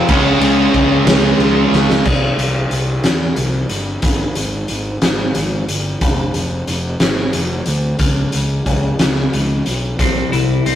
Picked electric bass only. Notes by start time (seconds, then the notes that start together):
0.09 C#2
0.40 C#2
0.74 C#2
1.05 C#2
1.38 C#2
1.72 C#2
2.05 C2
2.37 C2
2.71 C2
3.04 E2
3.37 C2
3.69 G1
4.03 G#1
4.37 G#1
4.69 G#1
5.02 G#1
5.36 G#1
5.68 G1
6.01 F1
6.35 F1
6.68 F1
7.01 G#1
7.34 F1
7.67 D2
7.99 C#2
8.34 C#2
8.66 C#2
9.01 C#2
9.34 C#2
9.67 B1
9.99 C2
10.33 C2
10.66 C2